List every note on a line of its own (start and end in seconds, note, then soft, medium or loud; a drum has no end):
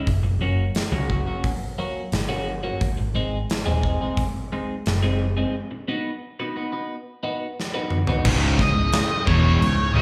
0.07 0.22 F#1 loud
0.07 kick loud
0.07 open hi-hat soft
0.22 0.38 F#1 medium
0.22 muted clean electric guitar stroke medium
0.39 0.69 F#1 medium
0.39 0.64 F#3 medium
0.39 0.64 A#3 medium
0.39 0.64 C#4 medium
0.39 0.64 F#4 medium
0.75 snare loud
0.75 open hi-hat soft
0.92 1.21 C#2 medium
0.92 1.08 F#3 medium
0.92 1.09 A#3 medium
0.92 1.09 C#4 medium
0.92 1.09 F#4 medium
1.10 1.27 F#3 medium
1.10 1.26 A#3 medium
1.10 1.26 C#4 medium
1.10 1.25 F#4 medium
1.10 kick medium
1.26 1.50 F#3 medium
1.26 1.50 A#3 medium
1.26 1.50 C#4 medium
1.26 1.49 F#4 medium
1.44 kick loud
1.44 open hi-hat soft
1.78 2.01 F#3 medium
1.78 2.01 A#3 medium
1.78 2.01 C#4 medium
1.78 2.01 F#4 medium
2.12 2.70 G1 medium
2.12 snare loud
2.12 open hi-hat soft
2.29 2.52 F#3 medium
2.29 2.52 A#3 medium
2.29 2.51 C#4 medium
2.29 2.51 F#4 medium
2.63 2.81 F#3 medium
2.63 2.81 A#3 medium
2.63 2.80 C#4 medium
2.63 2.81 F#4 medium
2.81 2.95 G#1 medium
2.81 kick loud
2.81 open hi-hat soft
2.97 3.13 G#1 medium
2.97 muted clean electric guitar stroke soft
3.15 3.44 G#1 medium
3.15 3.37 G#3 medium
3.15 3.37 C4 medium
3.15 3.37 D#4 medium
3.15 3.38 G#4 medium
3.50 snare loud
3.50 open hi-hat soft
3.66 3.95 D#1 medium
3.66 3.82 G#3 medium
3.66 3.83 C4 medium
3.66 3.83 D#4 medium
3.66 3.83 G#4 medium
3.83 4.00 G#3 medium
3.83 4.00 C4 medium
3.83 4.00 D#4 medium
3.83 4.00 G#4 medium
3.83 kick medium
4.01 4.23 G#3 medium
4.01 4.23 C4 medium
4.01 4.23 D#4 medium
4.01 4.23 G#4 medium
4.17 kick loud
4.17 open hi-hat soft
4.52 4.74 G#3 medium
4.52 4.74 C4 medium
4.52 4.74 D#4 medium
4.52 4.74 G#4 medium
4.86 5.44 F#1 medium
4.86 snare loud
4.86 open hi-hat soft
5.03 5.25 G#3 medium
5.03 5.25 C4 medium
5.03 5.25 D#4 medium
5.03 5.25 G#4 medium
5.37 5.54 G#3 medium
5.37 5.54 C4 medium
5.37 5.54 D#4 medium
5.37 5.54 G#4 medium
5.71 muted clean electric guitar stroke soft
5.88 6.10 B3 medium
5.88 6.10 D#4 medium
5.88 6.10 F#4 medium
5.88 6.10 B4 medium
6.40 6.55 B3 medium
6.40 6.55 D#4 medium
6.40 6.55 F#4 medium
6.40 6.56 B4 medium
6.56 6.72 B3 medium
6.56 6.72 D#4 medium
6.56 6.72 F#4 medium
6.56 6.71 B4 medium
6.72 6.95 B3 medium
6.72 6.95 D#4 medium
6.72 6.95 F#4 medium
6.72 6.94 B4 medium
7.23 7.45 B3 medium
7.23 7.46 D#4 medium
7.23 7.46 F#4 medium
7.23 7.46 B4 medium
7.60 snare medium
7.74 7.97 B3 medium
7.74 7.97 D#4 medium
7.74 7.97 F#4 medium
7.74 7.96 B4 medium
7.90 mid tom medium
8.07 8.26 B3 medium
8.07 8.26 D#4 medium
8.07 8.26 F#4 medium
8.07 8.25 B4 medium
8.07 floor tom medium
8.24 8.56 C#1 medium
8.24 8.58 C#2 loud
8.24 8.59 G#2 loud
8.24 10.02 C#3 medium
8.24 8.59 C#3 loud
8.24 10.02 G#3 medium
8.24 10.02 E4 medium
8.24 kick loud
8.24 crash loud
8.24 crash medium
8.59 8.91 C#1 medium
8.59 8.87 C#2 medium
8.59 8.87 G#2 medium
8.59 9.26 D#5 loud
8.59 kick medium
8.59 snare soft
8.92 snare loud
8.92 crash medium
9.27 9.59 E1 loud
9.27 9.60 E2 medium
9.27 9.60 B2 medium
9.27 9.61 E3 loud
9.27 9.93 C#5 medium
9.27 kick medium
9.59 9.92 C#1 medium
9.59 9.88 C#2 medium
9.59 9.88 G#2 medium
9.59 crash medium
9.94 10.02 C#1 loud
9.94 10.02 C#2 loud
9.94 10.02 G#2 loud
9.94 10.02 C#3 loud
9.94 10.02 E5 loud